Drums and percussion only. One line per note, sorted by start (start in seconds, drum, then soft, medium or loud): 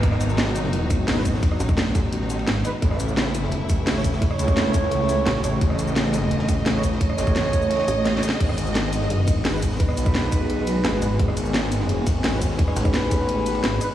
0.03 kick loud
0.03 closed hi-hat medium
0.03 ride loud
0.11 cross-stick soft
0.11 snare soft
0.21 closed hi-hat loud
0.21 ride medium
0.21 shaker medium
0.29 shaker soft
0.37 snare loud
0.37 closed hi-hat medium
0.37 ride medium
0.47 snare soft
0.55 closed hi-hat medium
0.55 ride medium
0.55 shaker medium
0.64 snare medium
0.73 closed hi-hat medium
0.73 ride medium
0.90 kick loud
0.90 snare soft
0.90 closed hi-hat loud
0.90 ride medium
0.90 shaker medium
1.07 snare loud
1.07 closed hi-hat medium
1.07 open hi-hat medium
1.17 ride soft
1.25 kick medium
1.25 closed hi-hat medium
1.25 ride medium
1.25 shaker medium
1.34 snare medium
1.43 kick loud
1.43 closed hi-hat medium
1.43 ride medium
1.51 cross-stick soft
1.51 ride soft
1.60 closed hi-hat medium
1.60 ride medium
1.60 shaker medium
1.69 kick loud
1.69 cross-stick soft
1.69 shaker soft
1.77 snare loud
1.77 closed hi-hat medium
1.77 ride medium
1.86 snare soft
1.95 kick loud
1.95 snare loud
1.95 closed hi-hat medium
1.95 ride medium
1.95 shaker medium
2.04 snare soft
2.13 closed hi-hat medium
2.13 ride medium
2.21 snare soft
2.30 closed hi-hat medium
2.30 ride medium
2.30 shaker medium
2.39 ride medium
2.47 snare loud
2.47 snare soft
2.47 closed hi-hat medium
2.56 ride medium
2.64 cross-stick soft
2.64 closed hi-hat medium
2.64 ride medium
2.64 shaker medium
2.82 kick loud
2.82 closed hi-hat medium
2.82 ride medium
2.91 cross-stick soft
2.91 snare soft
3.00 closed hi-hat medium
3.00 ride medium
3.00 shaker medium
3.09 shaker soft
3.17 snare loud
3.17 closed hi-hat medium
3.17 ride medium
3.26 snare medium
3.35 closed hi-hat medium
3.35 ride medium
3.35 shaker medium
3.44 snare medium
3.51 closed hi-hat medium
3.51 ride medium
3.69 kick loud
3.69 snare soft
3.69 closed hi-hat medium
3.69 ride medium
3.69 shaker medium
3.86 snare loud
3.86 closed hi-hat medium
3.86 open hi-hat medium
3.96 ride soft
4.04 kick medium
4.04 closed hi-hat loud
4.04 ride medium
4.04 shaker medium
4.13 snare medium
4.22 kick loud
4.22 closed hi-hat medium
4.22 ride medium
4.31 cross-stick soft
4.31 ride soft
4.39 closed hi-hat medium
4.39 ride medium
4.39 shaker medium
4.48 kick loud
4.48 cross-stick soft
4.48 shaker soft
4.56 snare loud
4.56 closed hi-hat medium
4.56 ride medium
4.65 snare soft
4.74 kick loud
4.74 closed hi-hat medium
4.74 ride medium
4.74 shaker medium
4.83 snare soft
4.91 closed hi-hat medium
4.91 ride medium
5.00 snare soft
5.09 snare medium
5.09 closed hi-hat loud
5.09 ride medium
5.09 shaker medium
5.26 snare loud
5.26 closed hi-hat medium
5.26 ride medium
5.35 snare medium
5.44 cross-stick soft
5.44 closed hi-hat loud
5.44 ride medium
5.44 shaker medium
5.61 kick loud
5.61 closed hi-hat medium
5.61 ride medium
5.70 cross-stick soft
5.70 snare soft
5.79 closed hi-hat medium
5.79 ride medium
5.79 shaker medium
5.88 shaker soft
5.96 snare loud
5.96 closed hi-hat medium
5.96 ride medium
6.06 snare soft
6.13 snare loud
6.13 closed hi-hat loud
6.13 ride medium
6.13 shaker medium
6.22 snare soft
6.31 closed hi-hat medium
6.31 ride medium
6.39 snare loud
6.39 ride medium
6.48 kick loud
6.48 snare loud
6.48 closed hi-hat loud
6.48 ride medium
6.48 shaker medium
6.58 snare soft
6.66 snare loud
6.66 closed hi-hat medium
6.66 ride medium
6.74 snare soft
6.83 kick medium
6.83 closed hi-hat loud
6.83 ride medium
6.83 shaker medium
6.92 snare medium
7.01 kick loud
7.01 closed hi-hat medium
7.01 ride medium
7.09 cross-stick medium
7.09 ride soft
7.18 snare loud
7.18 closed hi-hat loud
7.18 ride medium
7.18 shaker medium
7.27 kick loud
7.27 cross-stick soft
7.27 shaker soft
7.36 snare loud
7.36 closed hi-hat medium
7.44 snare medium
7.53 kick loud
7.53 closed hi-hat loud
7.53 shaker medium
7.62 shaker soft
7.70 snare loud
7.70 closed hi-hat medium
7.70 ride medium
7.75 snare medium
7.75 ride medium
7.79 snare medium
7.79 ride medium
7.84 snare medium
7.84 ride medium
7.88 snare soft
7.88 closed hi-hat loud
7.88 ride medium
7.88 shaker medium
8.05 snare loud
8.05 snare medium
8.05 closed hi-hat medium
8.05 ride medium
8.15 snare medium
8.17 snare medium
8.23 snare loud
8.23 closed hi-hat loud
8.23 ride medium
8.23 shaker medium
8.29 snare loud
8.29 ride medium
8.29 shaker soft
8.32 snare medium
8.40 kick loud
8.40 closed hi-hat medium
8.40 ride medium
8.40 crash medium
8.49 cross-stick soft
8.49 snare soft
8.58 closed hi-hat loud
8.58 ride medium
8.58 ride bell medium
8.58 shaker medium
8.67 shaker soft
8.75 snare loud
8.75 closed hi-hat medium
8.75 ride medium
8.84 snare medium
8.93 closed hi-hat loud
8.93 ride medium
8.93 ride bell medium
8.93 shaker medium
9.01 snare medium
9.10 closed hi-hat medium
9.10 ride medium
9.28 kick loud
9.28 snare soft
9.28 closed hi-hat loud
9.28 ride medium
9.28 ride bell medium
9.28 shaker medium
9.45 snare loud
9.45 closed hi-hat medium
9.45 open hi-hat medium
9.54 ride soft
9.62 kick medium
9.62 closed hi-hat loud
9.62 ride medium
9.62 ride bell medium
9.62 shaker medium
9.72 snare medium
9.80 kick loud
9.80 closed hi-hat medium
9.80 ride medium
9.89 cross-stick medium
9.89 ride soft
9.97 closed hi-hat medium
9.97 ride medium
9.97 ride bell medium
9.97 shaker medium
10.06 kick loud
10.06 cross-stick soft
10.06 shaker soft
10.15 snare loud
10.15 closed hi-hat medium
10.15 ride medium
10.24 snare medium
10.32 kick loud
10.32 closed hi-hat medium
10.32 ride medium
10.32 ride bell medium
10.32 shaker medium
10.41 snare soft
10.50 closed hi-hat medium
10.50 ride medium
10.58 snare soft
10.67 snare soft
10.67 closed hi-hat loud
10.67 ride medium
10.67 ride bell medium
10.67 shaker medium
10.84 snare loud
10.84 closed hi-hat medium
10.84 ride medium
10.94 snare medium
11.02 cross-stick soft
11.02 closed hi-hat loud
11.02 ride medium
11.02 ride bell medium
11.02 shaker medium
11.19 kick loud
11.19 closed hi-hat medium
11.19 ride medium
11.28 cross-stick soft
11.28 snare soft
11.37 closed hi-hat loud
11.37 ride medium
11.37 ride bell medium
11.37 shaker medium
11.46 shaker soft
11.54 snare loud
11.54 closed hi-hat medium
11.54 ride loud
11.63 snare medium
11.72 closed hi-hat medium
11.72 ride medium
11.72 ride bell medium
11.72 shaker medium
11.80 snare medium
11.89 closed hi-hat medium
11.89 ride medium
12.06 kick loud
12.06 snare soft
12.06 closed hi-hat loud
12.06 ride medium
12.06 ride bell medium
12.06 shaker medium
12.23 snare loud
12.23 closed hi-hat medium
12.23 open hi-hat medium
12.33 ride soft
12.42 kick medium
12.42 closed hi-hat loud
12.42 ride medium
12.42 ride bell medium
12.42 shaker medium
12.50 snare medium
12.58 kick loud
12.58 closed hi-hat medium
12.58 ride medium
12.68 cross-stick soft
12.68 ride soft
12.76 closed hi-hat medium
12.76 ride medium
12.76 ride bell medium
12.76 shaker medium
12.85 kick loud
12.85 cross-stick soft
12.85 shaker soft
12.94 snare loud
12.94 closed hi-hat medium
12.94 ride medium
13.03 snare medium
13.11 kick loud
13.11 snare loud
13.11 closed hi-hat medium
13.11 ride medium
13.11 ride bell medium
13.11 shaker medium
13.20 snare soft
13.29 closed hi-hat medium
13.29 ride medium
13.37 snare soft
13.46 closed hi-hat medium
13.46 ride medium
13.46 ride bell medium
13.46 shaker medium
13.55 ride medium
13.64 snare soft
13.64 snare loud
13.64 closed hi-hat medium
13.72 ride medium
13.81 cross-stick soft
13.81 closed hi-hat medium
13.81 ride medium
13.81 ride bell medium
13.81 shaker medium